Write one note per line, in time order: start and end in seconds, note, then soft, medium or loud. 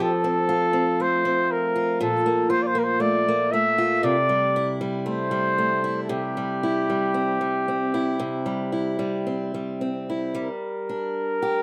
0.00 3.49 F3 medium
0.00 0.24 C4 medium
0.00 0.11 E4 soft
0.00 0.10 G4 medium
0.00 1.03 A4 medium
0.24 0.72 C4 soft
0.49 1.75 F4 medium
0.73 1.24 C4 medium
1.00 2.04 A3 soft
1.00 1.53 C5 medium
1.25 2.10 C4 soft
1.51 2.01 A#4 medium
1.76 2.49 F4 medium
2.01 4.03 A#2 medium
2.01 2.51 A4 medium
2.26 2.74 A#3 soft
2.50 3.77 F4 medium
2.50 2.64 C5 medium
2.62 2.80 C5 medium
2.62 2.68 D5 medium
2.75 3.27 A#3 medium
2.75 2.85 A#4 medium
2.83 3.02 C5 medium
3.00 3.53 A3 soft
3.00 3.53 D5 medium
3.28 4.16 A#3 soft
3.52 4.32 A3 medium
3.52 4.05 E5 medium
3.78 4.15 F4 medium
4.03 6.08 C3 medium
4.03 4.81 D5 medium
4.29 4.80 G3 medium
4.56 5.84 E4 medium
4.81 5.31 G3 medium
5.06 5.57 A3 medium
5.06 5.99 C5 medium
5.31 6.37 G3 soft
5.58 6.21 A3 soft
5.84 6.63 E4 medium
6.03 6.11 A4 soft
6.09 8.18 C3 medium
6.09 9.30 G4 medium
6.37 6.89 G3 soft
6.63 7.93 E4 medium
6.90 7.40 G3 soft
7.14 7.67 C4 soft
7.41 8.45 G3 soft
7.68 9.25 C4 soft
7.94 8.71 E4 medium
8.19 10.47 C3 medium
8.46 8.98 G3 soft
8.72 10.08 E4 soft
8.99 9.54 G3 soft
9.27 9.80 C4 soft
9.54 10.35 G3 soft
9.81 10.47 C4 soft
10.10 10.47 E4 soft
10.35 11.62 G3 medium
10.35 11.62 A#4 medium
10.89 11.62 D4 soft
11.42 11.62 G4 medium